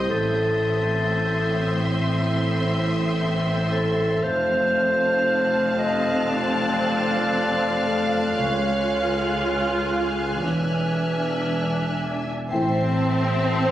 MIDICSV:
0, 0, Header, 1, 12, 480
1, 0, Start_track
1, 0, Tempo, 1034483
1, 46, Time_signature, 4, 2, 24, 8
1, 6363, End_track
2, 0, Start_track
2, 0, Title_t, "Violin section"
2, 0, Program_c, 0, 48
2, 0, Note_on_c, 0, 87, 27
2, 0, Note_on_c, 0, 91, 30
2, 1708, Note_off_c, 0, 91, 0
2, 1709, Note_off_c, 0, 87, 0
2, 1962, Note_on_c, 0, 89, 43
2, 2440, Note_on_c, 0, 90, 46
2, 5544, Note_off_c, 0, 90, 0
2, 5545, Note_off_c, 0, 89, 0
2, 5805, Note_on_c, 0, 96, 37
2, 6288, Note_on_c, 0, 97, 40
2, 6363, Note_off_c, 0, 96, 0
2, 6363, Note_off_c, 0, 97, 0
2, 6363, End_track
3, 0, Start_track
3, 0, Title_t, "Violin section"
3, 0, Program_c, 1, 48
3, 48, Note_on_c, 1, 84, 57
3, 1948, Note_off_c, 1, 84, 0
3, 1970, Note_on_c, 1, 81, 72
3, 3869, Note_off_c, 1, 81, 0
3, 3888, Note_on_c, 1, 80, 54
3, 5696, Note_off_c, 1, 80, 0
3, 5810, Note_on_c, 1, 81, 50
3, 6363, Note_off_c, 1, 81, 0
3, 6363, End_track
4, 0, Start_track
4, 0, Title_t, "Glass harmonica"
4, 0, Program_c, 2, 92
4, 47, Note_on_c, 2, 76, 36
4, 48, Note_on_c, 2, 69, 35
4, 48, Note_on_c, 2, 84, 34
4, 1948, Note_off_c, 2, 84, 0
4, 1958, Note_off_c, 2, 69, 0
4, 1959, Note_on_c, 2, 65, 44
4, 1960, Note_on_c, 2, 84, 44
4, 1963, Note_on_c, 2, 69, 46
4, 1966, Note_off_c, 2, 76, 0
4, 3864, Note_off_c, 2, 84, 0
4, 3866, Note_off_c, 2, 69, 0
4, 3883, Note_on_c, 2, 73, 35
4, 3886, Note_on_c, 2, 80, 35
4, 4840, Note_on_c, 2, 74, 18
4, 4842, Note_off_c, 2, 65, 0
4, 4843, Note_on_c, 2, 76, 19
4, 4844, Note_off_c, 2, 73, 0
4, 5802, Note_off_c, 2, 76, 0
4, 5803, Note_off_c, 2, 74, 0
4, 5806, Note_off_c, 2, 80, 0
4, 5806, Note_on_c, 2, 81, 38
4, 5808, Note_on_c, 2, 72, 36
4, 5808, Note_on_c, 2, 76, 39
4, 6363, Note_off_c, 2, 72, 0
4, 6363, Note_off_c, 2, 76, 0
4, 6363, Note_off_c, 2, 81, 0
4, 6363, End_track
5, 0, Start_track
5, 0, Title_t, "Violin section"
5, 0, Program_c, 3, 48
5, 49, Note_on_c, 3, 76, 50
5, 1949, Note_off_c, 3, 76, 0
5, 1970, Note_on_c, 3, 77, 62
5, 4829, Note_off_c, 3, 77, 0
5, 4852, Note_on_c, 3, 76, 33
5, 5697, Note_off_c, 3, 76, 0
5, 5812, Note_on_c, 3, 72, 45
5, 5812, Note_on_c, 3, 76, 44
5, 6363, Note_off_c, 3, 72, 0
5, 6363, Note_off_c, 3, 76, 0
5, 6363, End_track
6, 0, Start_track
6, 0, Title_t, "Celesta"
6, 0, Program_c, 4, 8
6, 0, Control_c, 4, 64, 127
6, 55, Control_c, 4, 64, 0
6, 137, Control_c, 4, 64, 127
6, 1974, Control_c, 4, 64, 0
6, 2056, Control_c, 4, 64, 127
6, 3647, Note_on_c, 4, 69, 39
6, 3895, Control_c, 4, 64, 0
6, 3971, Control_c, 4, 64, 127
6, 4855, Control_c, 4, 64, 0
6, 4926, Control_c, 4, 64, 127
6, 5068, Note_off_c, 4, 69, 0
6, 5805, Note_on_c, 4, 79, 30
6, 5813, Control_c, 4, 64, 0
6, 5903, Control_c, 4, 64, 127
6, 6363, Note_off_c, 4, 79, 0
6, 6363, End_track
7, 0, Start_track
7, 0, Title_t, "Clarinet"
7, 0, Program_c, 5, 71
7, 0, Note_on_c, 5, 67, 57
7, 45, Note_on_c, 5, 69, 73
7, 52, Note_off_c, 5, 67, 0
7, 876, Note_off_c, 5, 69, 0
7, 1008, Note_on_c, 5, 64, 66
7, 1468, Note_off_c, 5, 64, 0
7, 1724, Note_on_c, 5, 69, 75
7, 1961, Note_on_c, 5, 72, 93
7, 1968, Note_off_c, 5, 69, 0
7, 2683, Note_on_c, 5, 75, 78
7, 2690, Note_off_c, 5, 72, 0
7, 2922, Note_on_c, 5, 74, 74
7, 2929, Note_off_c, 5, 75, 0
7, 3882, Note_off_c, 5, 74, 0
7, 3884, Note_on_c, 5, 73, 71
7, 4699, Note_off_c, 5, 73, 0
7, 4846, Note_on_c, 5, 71, 33
7, 5547, Note_off_c, 5, 71, 0
7, 6363, End_track
8, 0, Start_track
8, 0, Title_t, "French horn section"
8, 0, Program_c, 6, 60
8, 5814, Note_on_c, 6, 64, 53
8, 5817, Note_on_c, 6, 57, 52
8, 5996, Note_off_c, 6, 64, 0
8, 5998, Note_off_c, 6, 57, 0
8, 6363, End_track
9, 0, Start_track
9, 0, Title_t, "Viola section"
9, 0, Program_c, 7, 48
9, 47, Note_on_c, 7, 60, 52
9, 1948, Note_off_c, 7, 60, 0
9, 1965, Note_on_c, 7, 60, 65
9, 3867, Note_off_c, 7, 60, 0
9, 3887, Note_on_c, 7, 65, 51
9, 4828, Note_off_c, 7, 65, 0
9, 4849, Note_on_c, 7, 62, 30
9, 5696, Note_off_c, 7, 62, 0
9, 5804, Note_on_c, 7, 60, 72
9, 6363, Note_off_c, 7, 60, 0
9, 6363, End_track
10, 0, Start_track
10, 0, Title_t, "Cello section"
10, 0, Program_c, 8, 48
10, 45, Note_on_c, 8, 45, 49
10, 1947, Note_off_c, 8, 45, 0
10, 1965, Note_on_c, 8, 41, 59
10, 3886, Note_off_c, 8, 41, 0
10, 3889, Note_on_c, 8, 37, 48
10, 4829, Note_off_c, 8, 37, 0
10, 4848, Note_on_c, 8, 40, 31
10, 5714, Note_off_c, 8, 40, 0
10, 5807, Note_on_c, 8, 45, 54
10, 6363, Note_off_c, 8, 45, 0
10, 6363, End_track
11, 0, Start_track
11, 0, Title_t, "Double bass section"
11, 0, Program_c, 10, 48
11, 48, Note_on_c, 10, 33, 51
11, 1949, Note_off_c, 10, 33, 0
11, 1966, Note_on_c, 10, 29, 64
11, 3886, Note_off_c, 10, 29, 0
11, 3887, Note_on_c, 10, 37, 50
11, 4828, Note_off_c, 10, 37, 0
11, 4850, Note_on_c, 10, 28, 34
11, 5715, Note_off_c, 10, 28, 0
11, 5814, Note_on_c, 10, 33, 55
11, 6363, Note_off_c, 10, 33, 0
11, 6363, End_track
12, 0, Start_track
12, 0, Title_t, "Sub bass"
12, 0, Program_c, 11, 38
12, 0, Note_on_c, 11, 36, 55
12, 50, Note_on_c, 11, 33, 62
12, 57, Note_off_c, 11, 36, 0
12, 1968, Note_on_c, 11, 29, 68
12, 1975, Note_off_c, 11, 33, 0
12, 3895, Note_on_c, 11, 37, 57
12, 3902, Note_off_c, 11, 29, 0
12, 4848, Note_on_c, 11, 28, 55
12, 4855, Note_off_c, 11, 37, 0
12, 5807, Note_off_c, 11, 28, 0
12, 5811, Note_on_c, 11, 33, 65
12, 6363, Note_off_c, 11, 33, 0
12, 6363, End_track
0, 0, End_of_file